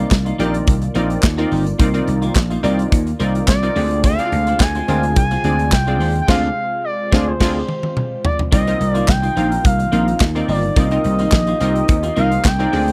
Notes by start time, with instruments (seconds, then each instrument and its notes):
Already playing: analog synth pad D#3 A#3 F4 D5, analog polysynth C4 D#4 F4 A#4 D5
0.11 slap bass C2, muted clean electric guitar stroke, kick, snare, clap
0.25 clean electric guitar A#3 D#4 F4, closed hi-hat
0.38 slap bass A#1, clean electric guitar A#3 D#4 G4, horn section A#3 G4 D5, analog polysynth C4 D#4 F4 A#4 D5, closed hi-hat
0.53 muted clean electric guitar stroke, closed hi-hat
0.67 slap bass C2, kick, closed hi-hat
0.82 muted clean electric guitar stroke, closed hi-hat
0.95 slap bass A#1, clean electric guitar A#3 D#4 F4, analog polysynth C4 D#4 F4 A#4 D5, closed hi-hat
1.10 muted clean electric guitar stroke, closed hi-hat
1.23 slap bass D#2, muted clean electric guitar stroke, kick, snare, clap
1.37 clean electric guitar A#3 D#4 F4, analog polysynth C4 D#4 F4 A#4 D5, closed hi-hat
1.51 slap bass G1, clean electric guitar A#3 D#4 G4, open hi-hat
1.66 muted clean electric guitar stroke, closed hi-hat
1.79 slap bass C2, clean electric guitar A#3 D#4 F4, analog polysynth C4 D#4 F4 A#4 D5, kick, closed hi-hat
1.94 analog polysynth C4 D#4 F4 A#4 D5, muted clean electric guitar stroke, closed hi-hat
2.07 slap bass C2, muted clean electric guitar stroke, closed hi-hat
2.22 clean electric guitar A#3 D#4 F4, closed hi-hat
2.35 slap bass A#1, kick, snare, clap
2.50 clean electric guitar A#3 D#4 F4, closed hi-hat
2.63 slap bass C2, clean electric guitar A#3 D#4 G4, horn section A#3 G4 D5, analog polysynth C4 D#4 F4 A#4 D5, closed hi-hat
2.79 muted clean electric guitar stroke, closed hi-hat
2.92 slap bass D#2, kick, closed hi-hat
3.07 muted clean electric guitar stroke, closed hi-hat
3.20 slap bass C2, clean electric guitar A#3 D#4 F4, analog polysynth C4 D#4 F4 A#4 D5, closed hi-hat
3.35 muted clean electric guitar stroke, closed hi-hat
3.48 slap bass C2, analog synth lead D5, muted clean electric guitar stroke, kick, snare, clap
3.63 analog polysynth C4 D#4 F4 A#4 D5, muted clean electric guitar stroke, closed hi-hat
3.76 slap bass D2, analog synth pad C3 G#3, clean electric guitar G#3 C4 G4, analog polysynth C4 D4 F4 G#4 D5, open hi-hat
3.91 muted clean electric guitar stroke, closed hi-hat
4.04 clean electric guitar G#3 C4 F4, analog synth lead F5, kick, closed hi-hat
4.19 analog polysynth C4 D4 E4 G#4 D5, muted clean electric guitar stroke, closed hi-hat
4.26 analog polysynth F4
4.32 slap bass D2, muted clean electric guitar stroke, closed hi-hat
4.47 clean electric guitar G#3 C4 F4, closed hi-hat
4.60 slap bass D2, analog synth lead G#5, kick, snare, clap
4.75 clean electric guitar G#3 C4 F4, closed hi-hat
4.88 slap bass D2, horn section G#3 F4 C5, clean electric guitar G#3 C4 G4, analog polysynth C4 D4 F4 G#4 A#4, closed hi-hat
5.03 muted clean electric guitar stroke, closed hi-hat
5.16 slap bass C2, analog synth lead G#5, muted clean electric guitar stroke, kick, closed hi-hat
5.31 clean electric guitar G#3 C4 F4, closed hi-hat
5.44 slap bass D2, analog polysynth C4 D4 F4 G#4 D5, muted clean electric guitar stroke, closed hi-hat
5.59 muted clean electric guitar stroke, closed hi-hat
5.72 slap bass C2, analog synth lead G5, muted clean electric guitar stroke, kick, snare, clap
5.87 clean electric guitar G#3 C4 F4, analog polysynth C4 D4 F4 G#4 D5, closed hi-hat
6.00 slap bass D#2, clean electric guitar G#3 C4 G4, analog synth pad C4, open hi-hat
6.15 muted clean electric guitar stroke, closed hi-hat
6.22 analog synth lead G5
6.28 slap bass D2, clean electric guitar G#3 C4 F4, horn section G#3 F4 C5, analog polysynth C4 D4 F4 G#4 D5, analog synth lead F5, kick, snare, crash
6.84 analog synth lead D5
7.12 slap bass D2, clean electric guitar G#3 C4, horn section G#3 F4 C5, analog polysynth C4 D4 F4 G#4 D5, kick, snare
7.28 analog synth lead C5
7.40 slap bass D2, clean electric guitar G#3 C4, horn section G#3 F4 C5, analog polysynth C4 D4 F4 G#4 D5, kick, snare, crash
7.69 high tom
7.83 high tom
7.97 mid tom
8.25 analog synth lead D5, floor tom
8.39 floor tom
8.52 slap bass C2, analog synth pad D#3 A#3 D#4 F4, clean electric guitar A#3 D#4 F4, analog polysynth C4 D#4 F4 A#4 D5, analog synth lead D#5, kick, closed hi-hat
8.67 analog polysynth C4 D#4 F4 A#4 D#5, muted clean electric guitar stroke, closed hi-hat
8.80 slap bass C2, muted clean electric guitar stroke, closed hi-hat
8.91 clean electric guitar F4, analog synth lead D5
8.95 clean electric guitar A#3 D#4, closed hi-hat
9.08 slap bass C2, analog synth lead G5, muted clean electric guitar stroke, kick, snare, clap
9.22 clean electric guitar A#3 D#4 F4, closed hi-hat
9.36 slap bass A#1, clean electric guitar A#3 D#4 G4, analog polysynth C4 D#4 F4 A#4 F5, closed hi-hat
9.51 muted clean electric guitar stroke, closed hi-hat
9.64 slap bass C2, analog synth lead F5, muted clean electric guitar stroke, kick, closed hi-hat
9.79 muted clean electric guitar stroke, closed hi-hat
9.92 slap bass A#1, clean electric guitar A#3 D#4 F4, analog polysynth C4 D#4 F4 A#4 F5, closed hi-hat
10.07 muted clean electric guitar stroke, closed hi-hat
10.20 slap bass D#2, muted clean electric guitar stroke, kick, snare, clap
10.35 clean electric guitar A#3 D#4 F4, analog polysynth C4 D#4 F4 A#4 D5, closed hi-hat
10.48 slap bass G1, clean electric guitar A#3 D#4 G4, analog synth lead D5, open hi-hat
10.63 muted clean electric guitar stroke, closed hi-hat
10.76 slap bass C2, clean electric guitar A#3 D#4 F4, analog polysynth C4 D#4 F4 A#4 D5, analog synth pad G4, analog synth lead D#5, kick, closed hi-hat
10.91 analog polysynth C4 D#4 F4 A#4 D#5, muted clean electric guitar stroke, closed hi-hat
11.04 slap bass C2, muted clean electric guitar stroke, closed hi-hat
11.19 clean electric guitar A#3 D#4 F4, closed hi-hat
11.32 slap bass A#1, kick, snare, clap
11.47 clean electric guitar A#3 D#4 F4, closed hi-hat
11.60 slap bass C2, clean electric guitar A#3 D#4 G4, analog polysynth C4 D#4 F4 A#4 D#5, closed hi-hat
11.75 muted clean electric guitar stroke, closed hi-hat
11.88 slap bass D#2, muted clean electric guitar stroke, kick, closed hi-hat
12.03 clean electric guitar A#3 D#4 F4, closed hi-hat
12.16 slap bass C2, clean electric guitar A#3 D#4 F4, analog polysynth C4 D#4 F4 A#4 D#5, analog synth lead F5, closed hi-hat
12.31 muted clean electric guitar stroke, closed hi-hat
12.44 slap bass C2, analog synth lead G5, muted clean electric guitar stroke, kick, snare, clap
12.59 clean electric guitar A#3 D#4 F4, analog polysynth C4 D#4 F4 A#4 D5, closed hi-hat
12.72 slap bass D2, analog synth pad C3 G#3 F4 D5, clean electric guitar G#3 C4 G4, analog polysynth C4 D4 F4 G#4 D5, open hi-hat
12.87 muted clean electric guitar stroke, closed hi-hat